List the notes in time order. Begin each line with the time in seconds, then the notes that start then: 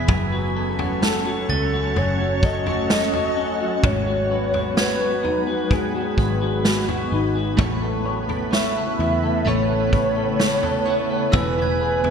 Already playing: E3 B3 E4 G#4 B6
0.08 F#1 F#3 A3 C#4, kick, floor tom
0.32 F#4
0.56 A4
0.79 F#4, floor tom
1.02 A4, snare
1.27 F#4
1.49 C#2 C#4 A6, floor tom
1.74 F#4
1.96 F#1 F#3 C#5, floor tom
2.21 F#4
2.43 A4 D#5, kick
2.66 F#4, floor tom
2.90 A4, snare
3.13 F#4, floor tom
3.37 C#4
3.60 F#4
3.83 G#1 G#3 B3 C#5, kick, floor tom
4.07 F#4
4.31 B4
4.54 F#4, floor tom
4.77 B4 G#6, snare
5.00 F#4
5.24 F#1 D#4, floor tom
5.47 F#4
5.71 G#3 G#4, kick, floor tom
5.95 F#4
6.18 G#1 B4, kick
6.42 F#4
6.65 F#4 B4, snare
6.88 F#4, floor tom
7.12 G#1 D#4
7.36 F#4
7.57 A1 C#3 A3 B3 E4 A4 C#5, kick, floor tom
7.82 A4
8.05 C#5
8.28 A4, floor tom
8.51 B3 E4 A4 C#5 E5, snare
8.55 C#5
8.76 A4
8.99 E2 E4, floor tom
9.23 A4
9.45 A1 A3 B3 E4 A4 C#5, floor tom
9.70 A4
9.93 C#5, kick
10.17 A4
10.40 C#5, snare
10.63 A4, floor tom
10.86 E4 A4 C#5
10.90 E4
11.10 A4
11.32 E1 E3 G#3 B3 E4 G#4 B4 E6, kick, floor tom
11.57 E4
11.62 G#6
11.81 G#4
12.04 E4, floor tom